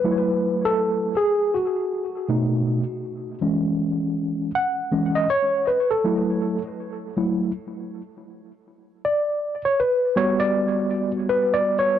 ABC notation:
X:1
M:4/4
L:1/16
Q:"Swing 16ths" 1/4=80
K:E
V:1 name="Tine electric piano"
B3 A3 G2 F8- | F2 z6 f3 d c2 B A- | A3 z12 z | =d3 c B2 c d4 z (3B2 d2 c2 |]
V:2 name="Tine electric piano"
[F,A,E]6 z6 [B,,A,D]2 z2 | z2 [E,G,C]6 z2 [E,G,C]2 z4 | [F,A,E]2 z4 [F,A,E]2 z8 | z6 [=G,B,F]8- [G,B,F]2 |]